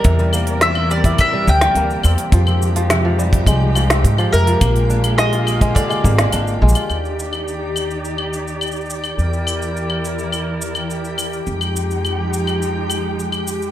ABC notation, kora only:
X:1
M:4/4
L:1/16
Q:1/4=105
K:Eb
V:1 name="Kora" clef=bass
C, G, B,2 C2 G, =E z G, C, G, B,2 C2 | F, C z F, C, F, G,2 A,2 F, C z F, C, F, | B,2 D2 A, F z A, D, A, B,2 D2 A, F | z16 |
z16 | z16 |]